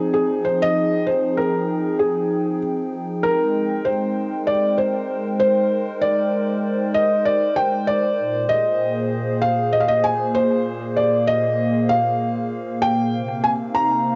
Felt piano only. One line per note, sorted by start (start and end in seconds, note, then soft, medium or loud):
0.00 0.12 G#4 medium
0.14 0.43 G#4 medium
0.45 0.63 C5 medium
0.62 1.09 D#5 loud
1.07 1.36 C5 medium
1.37 1.96 A#4 medium
1.99 2.58 G#4 medium
3.23 3.87 A#4 medium
3.85 4.49 C5 medium
4.47 4.76 D5 medium
4.78 5.36 C5 medium
5.40 5.98 C5 loud
6.02 6.91 D5 medium
6.94 7.27 D#5 loud
7.25 7.55 D5 medium
7.56 7.85 G5 loud
7.87 8.52 D5 loud
8.49 9.38 D#5 loud
9.42 9.71 F5 loud
9.73 9.80 D#5 medium
9.80 9.89 F5 medium
9.88 10.03 D#5 loud
10.04 10.36 G#5 loud
10.35 10.99 C5 loud
10.96 11.26 D5 medium
11.27 11.92 D#5 loud
11.89 12.85 F5 loud
12.82 13.40 G5 loud
13.44 13.51 G#5 loud
13.75 14.15 A#5 loud